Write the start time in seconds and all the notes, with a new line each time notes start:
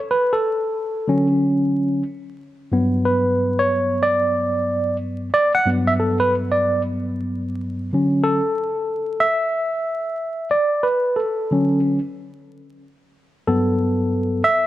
0.11 B4
0.33 A4
1.08 D3 F#3 C#4
2.72 G2 F#3 B3
3.05 B4
3.59 C#5
4.03 D5
5.34 D5
5.55 F#5
5.66 G2 F#3 B3
5.87 E5
6.00 A4
6.20 B4
6.52 D5
7.93 D3 F#3 C#4
8.24 A4
9.20 E5
10.51 D5
10.83 B4
11.16 A4
11.51 D3 F#3 C#4
13.47 G2 F#3 B3 A4
14.44 E5